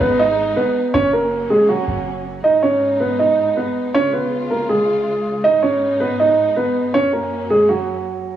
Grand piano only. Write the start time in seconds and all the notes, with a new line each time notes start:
0.01 B3 B4
0.19 D#4 D#5
0.56 B3 B4
0.94 C#4 C#5
1.13 A#3 A#4
1.50 G#3 G#4
1.69 F#3 F#4
2.44 D#4 D#5
2.63 C#4 C#5
3.00 B3 B4
3.19 D#4 D#5
3.56 B3 B4
3.94 C#4 C#5
4.13 B3 B4
4.51 A#3 A#4
4.69 G#3 G#4
5.44 D#4 D#5
5.63 C#4 C#5
6.00 B3 B4
6.20 D#4 D#5
6.56 B3 B4
6.94 C#4 C#5
7.13 A#3 A#4
7.50 G#3 G#4
7.69 F#3 F#4